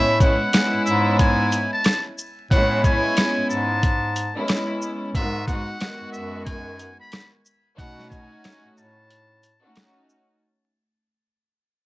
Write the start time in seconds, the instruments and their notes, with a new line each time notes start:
Already playing: bass clarinet A2, string section G#3 B3 C#4 E4, muted trumpet E5
0.19 string section G#3 B3 C#4 E4, muted trumpet F#5, kick, closed hi-hat, shaker
0.53 string section G#3 B3 C#4 E4, cross-stick, snare, closed hi-hat
0.74 bass clarinet G#2
0.85 bass clarinet G#2, muted trumpet E5, shaker
1.19 muted trumpet G#5, kick, closed hi-hat
1.52 closed hi-hat, shaker
1.73 muted trumpet A5
1.84 cross-stick, snare, closed hi-hat
2.18 shaker
2.51 bass clarinet A2, string section G#3 B3 C#4, muted trumpet F#5, kick, closed hi-hat
2.55 string section E4
2.84 muted trumpet G#5, kick, closed hi-hat, shaker
3.17 cross-stick, snare, closed hi-hat
3.38 bass clarinet G#2
3.50 bass clarinet G#2, muted trumpet A5, shaker
3.83 kick, closed hi-hat
4.16 closed hi-hat, shaker
4.35 string section G#3 B3 C#4 E4
4.48 cross-stick, snare, closed hi-hat
4.82 shaker
5.15 bass clarinet G#2, string section D#3 G#3 B3 F#4, muted trumpet E5, kick, closed hi-hat
5.47 string section G#3 B3 D#4 F#4, muted trumpet F#5, kick, closed hi-hat, shaker
5.80 string section D#3 G#3 B3 F#4, cross-stick, snare, closed hi-hat
6.01 bass clarinet F#2
6.12 bass clarinet F#2, muted trumpet E5, shaker
6.46 muted trumpet G#5, kick, closed hi-hat
6.79 closed hi-hat, shaker
7.00 muted trumpet B5
7.12 cross-stick, snare, closed hi-hat
7.46 shaker
7.75 bass clarinet B2, string section A3 C#4 D#4 F#4, muted trumpet F#5, kick, closed hi-hat
7.99 snare
8.10 muted trumpet G#5, kick, closed hi-hat, shaker
8.44 cross-stick, snare, closed hi-hat
8.65 bass clarinet A2
8.78 bass clarinet A2, muted trumpet A5, shaker
9.10 closed hi-hat
9.43 closed hi-hat, shaker
9.61 string section A3 C#4 D#4 F#4
9.76 cross-stick, snare, closed hi-hat
10.09 shaker